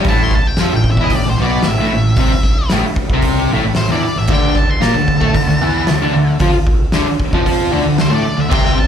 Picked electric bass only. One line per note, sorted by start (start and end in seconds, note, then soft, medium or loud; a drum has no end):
0.04 0.29 A1 loud
0.58 0.71 F2 medium
0.72 0.96 A1 medium
0.97 1.10 E2 medium
1.10 1.23 A1 medium
1.23 1.36 A1 medium
1.37 1.62 B1 loud
1.64 1.76 A1 medium
1.77 1.90 A1 medium
1.92 2.16 A1 medium
2.17 2.30 C2 loud
2.72 2.84 A1 loud
2.85 muted picked electric bass stroke soft
3.10 3.47 C2 loud
3.50 3.62 A1 loud
3.63 3.76 A1 medium
3.77 3.88 A1 medium
3.89 4.02 E2 loud
4.02 muted picked electric bass stroke soft
4.16 4.27 A1 medium
4.28 4.53 D2 loud
4.54 muted picked electric bass stroke soft
4.82 4.95 A#2 medium
4.95 5.20 D2 medium
5.21 5.34 A2 loud
5.35 5.46 D2 medium
5.47 5.60 D2 medium
5.61 5.86 E2 loud
5.89 6.01 D2 medium
6.01 6.14 D2 loud
6.14 6.39 D2 medium
6.40 6.53 F2 loud
6.54 muted picked electric bass stroke soft
6.93 7.06 D2 loud
7.08 muted picked electric bass stroke soft
7.33 7.70 F2 loud
7.73 7.86 D2 loud
7.86 7.99 D2 medium
7.99 8.12 D2 medium
8.13 8.25 A2 medium
8.26 muted picked electric bass stroke soft
8.38 8.51 D2 medium
8.51 8.77 C2 loud
8.77 muted picked electric bass stroke soft